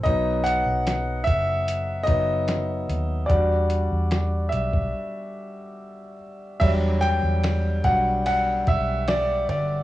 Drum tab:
CC |----------------|----------------|x---------------|
RD |----------------|----------------|x-x-x-x-x-x-x-x-|
HH |x-x-x-x-x-x-x-x-|x-x-x-x---------|----------------|
SD |----o-------o---|----o-----------|----o-------o---|
BD |o-----o---o-----|o------o--------|o-----o---o-----|